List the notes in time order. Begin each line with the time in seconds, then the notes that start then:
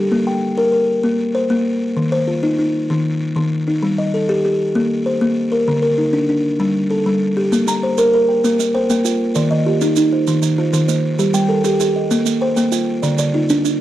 Already playing: G4
0.12 A#3
0.27 G5
0.58 A#4
0.72 A#4
1.03 A#3
1.35 C5
1.50 A#3
1.97 D#3
2.12 C5
2.28 F4
2.43 D#4
2.59 D#4
2.90 D#3
3.36 D#3
3.68 D#4
3.83 G3
3.98 D#5
4.14 A4
4.29 G4
4.45 G4
4.75 A#3
5.06 C5
5.21 A#3
5.52 A#4
5.68 D3
5.82 A#4
5.98 D#4
6.13 D4
6.29 D4
6.60 G3
6.90 A4
7.06 G3
7.37 G4
7.52 A#3, maracas
7.67 A#3 A#5, maracas
7.83 C5
7.98 A#4, maracas
8.14 A#4
8.29 G5
8.44 A#3, maracas
8.59 A#3, maracas
8.74 C5 G5
8.90 A#3 G5, maracas
9.05 F4 G5, maracas
9.35 D#3 D5, maracas
9.51 D#3 D#5
9.66 F4 G4
9.81 D#4, maracas
9.96 D#4, maracas
10.13 C5
10.27 D#3, maracas
10.42 D#3, maracas
10.58 F4 C5
10.73 D#3 C5, maracas
10.88 A#3 C5, maracas
11.19 G3 G4, maracas
11.34 G3 G5, maracas
11.49 A4 A#4
11.64 G4, maracas
11.80 G4, maracas
11.96 D#5
12.11 A#3, maracas
12.26 A#3, maracas
12.41 C5 G5
12.56 A#3 G5, maracas
12.72 F4 G5, maracas
13.02 D3 D5, maracas
13.18 D3 D5, maracas
13.34 D#4 F4
13.49 D4, maracas
13.65 D4, maracas